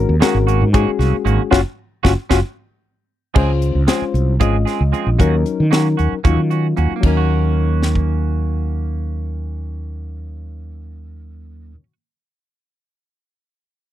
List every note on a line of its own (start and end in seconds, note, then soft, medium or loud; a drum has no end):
0.00 0.14 G#3 medium
0.00 0.14 C#4 medium
0.00 0.15 F#4 medium
0.00 0.15 A#4 loud
0.09 0.20 D#2 medium
0.20 0.37 D#3 medium
0.20 0.67 G#3 medium
0.20 0.37 A#3 medium
0.20 0.67 C#4 medium
0.20 0.37 C#4 medium
0.20 0.37 F#4 medium
0.20 0.67 F#4 medium
0.20 0.68 A#4 medium
0.20 muted fretless electric bass stroke soft
0.20 snare loud
0.20 closed hi-hat medium
0.35 0.63 G#1 medium
0.47 0.64 A#3 soft
0.47 0.63 C#4 soft
0.47 0.63 F#4 medium
0.47 closed hi-hat medium
0.61 0.84 G#2 medium
0.73 0.90 D#3 medium
0.73 1.52 G#3 medium
0.73 0.90 A#3 medium
0.73 1.50 C#4 medium
0.73 0.90 C#4 loud
0.73 1.50 F#4 medium
0.73 0.90 F#4 loud
0.73 1.52 G#4 medium
0.73 kick loud
0.73 closed hi-hat medium
0.88 muted fretless electric bass stroke soft
0.99 1.11 C2 medium
0.99 1.16 A#3 soft
0.99 1.16 C#4 soft
0.99 1.15 F#4 soft
0.99 snare soft
0.99 closed hi-hat medium
1.13 muted fretless electric bass stroke soft
1.25 1.37 G#1 medium
1.25 1.41 D#3 medium
1.25 1.41 A#3 medium
1.25 1.41 C#4 medium
1.25 1.42 F#4 medium
1.25 closed hi-hat medium
1.51 1.62 F#1 medium
1.51 1.60 C#4 loud
1.51 1.60 C#4 medium
1.51 1.60 F4 loud
1.51 1.60 F4 medium
1.51 1.60 F#4 medium
1.51 1.60 F#4 loud
1.51 kick medium
1.51 snare medium
2.03 2.14 F#1 medium
2.03 2.12 C#4 medium
2.03 2.13 C#4 medium
2.03 2.12 F4 medium
2.03 2.13 F4 medium
2.03 2.12 F#4 medium
2.03 2.13 F#4 medium
2.03 kick medium
2.03 snare medium
2.30 2.41 F#1 medium
2.30 2.38 C#4 medium
2.30 2.39 C#4 medium
2.30 2.39 F4 medium
2.30 2.39 F#4 medium
2.30 kick medium
2.30 snare medium
3.34 3.71 C#2 medium
3.34 3.50 F3 medium
3.34 3.51 G#3 medium
3.34 3.81 G#3 medium
3.34 3.51 C4 medium
3.34 3.81 C#4 medium
3.34 3.81 F4 medium
3.34 3.51 G#4 medium
3.34 3.82 C5 medium
3.34 kick loud
3.34 crash medium
3.62 closed hi-hat medium
3.75 3.86 C#2 medium
3.87 4.03 F3 medium
3.87 4.03 G#3 medium
3.87 4.33 G#3 medium
3.87 4.04 C4 medium
3.87 4.33 C#4 medium
3.87 4.34 F4 medium
3.87 4.04 G#4 medium
3.87 4.34 C5 medium
3.87 snare medium
3.87 closed hi-hat medium
4.02 muted fretless electric bass stroke soft
4.14 4.37 C2 medium
4.14 closed hi-hat soft
4.40 4.64 G#1 medium
4.40 4.56 F3 medium
4.40 4.56 G#3 medium
4.40 5.19 G#3 medium
4.40 4.56 C4 medium
4.40 5.19 C#4 medium
4.40 5.19 F4 medium
4.40 4.56 G#4 medium
4.40 5.19 D#5 medium
4.40 kick medium
4.40 closed hi-hat medium
4.65 4.82 G#3 soft
4.65 4.82 C4 soft
4.65 4.81 G#4 soft
4.65 snare soft
4.65 closed hi-hat medium
4.81 4.92 C#2 medium
4.92 5.08 F3 soft
4.92 5.08 G#3 soft
4.92 5.08 C4 medium
4.92 5.09 G#4 soft
4.92 closed hi-hat medium
5.07 5.18 A#1 medium
5.19 5.43 D#2 medium
5.19 5.64 F#3 medium
5.19 5.34 A#3 medium
5.19 5.35 C#4 medium
5.19 5.65 C#4 medium
5.19 5.65 D#4 medium
5.19 5.35 F#4 medium
5.19 5.65 A#4 medium
5.19 kick loud
5.19 closed hi-hat medium
5.46 closed hi-hat medium
5.60 5.94 D#3 medium
5.71 6.17 F#3 medium
5.71 5.87 A#3 medium
5.71 5.87 C#4 medium
5.71 6.17 C#4 medium
5.71 6.17 D#4 medium
5.71 5.87 F#4 medium
5.71 6.18 A#4 medium
5.71 snare medium
5.71 closed hi-hat medium
5.97 6.10 D#2 medium
5.97 6.14 C#4 soft
5.97 6.13 F#4 soft
5.97 closed hi-hat soft
6.24 6.36 D#2 medium
6.24 6.99 F#3 medium
6.24 6.40 A#3 medium
6.24 6.40 C#4 medium
6.24 7.01 C#4 medium
6.24 7.03 D#4 medium
6.24 7.04 F4 medium
6.24 6.40 F#4 medium
6.24 kick medium
6.24 closed hi-hat medium
6.37 6.72 D#3 medium
6.50 6.67 C#4 soft
6.50 6.66 F#4 soft
6.50 closed hi-hat soft
6.77 6.89 D#2 medium
6.77 6.92 A#3 soft
6.77 6.92 C#4 soft
6.77 6.93 F#4 soft
6.77 closed hi-hat soft
6.96 11.71 A#3 medium
7.01 11.75 D#2 medium
7.01 11.72 F#3 medium
7.01 11.74 C#4 medium
7.01 11.76 D#4 medium
7.01 kick medium
7.01 crash medium
7.06 11.83 C#4 medium
7.06 11.78 A#4 medium
7.17 11.92 F#4 medium
7.82 snare soft
7.95 kick soft